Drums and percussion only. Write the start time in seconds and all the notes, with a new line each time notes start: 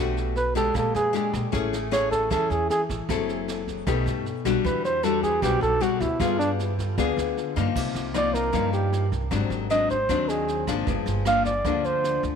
0.17 snare
0.36 snare
0.55 kick, snare
0.75 kick, cross-stick, snare
0.95 snare
1.14 snare
1.33 kick, cross-stick, snare
1.53 kick, snare
1.73 snare
1.92 cross-stick, snare
2.11 kick, snare
2.31 kick, cross-stick, snare
2.50 snare
2.70 snare
2.89 kick, snare
3.09 kick, cross-stick, snare
3.29 snare
3.48 snare
3.67 kick, snare
3.87 kick, cross-stick, snare
4.06 snare
4.26 snare
4.45 kick, cross-stick, snare
4.65 kick, snare
4.84 snare
5.04 cross-stick, snare
5.23 kick, snare
5.42 kick, cross-stick, snare
5.62 snare
5.82 snare
6.00 kick, snare
6.20 kick, cross-stick, snare
6.40 snare
6.59 snare
6.78 kick, snare
6.98 kick, cross-stick, snare
7.18 snare
7.37 snare
7.56 kick, cross-stick, snare
7.76 kick, snare, crash
7.95 snare
8.14 cross-stick, snare
8.34 kick, snare
8.53 kick, cross-stick, snare
8.73 snare
8.92 snare
9.12 kick, snare
9.31 kick, cross-stick, snare
9.51 snare
9.70 snare
9.89 kick, snare
10.09 kick, cross-stick, snare
10.28 snare
10.48 snare
10.67 kick, cross-stick, snare
10.87 kick, snare
11.06 snare
11.25 cross-stick, snare
11.45 kick, snare
11.65 kick, cross-stick, snare
11.84 snare
12.04 snare
12.23 kick, snare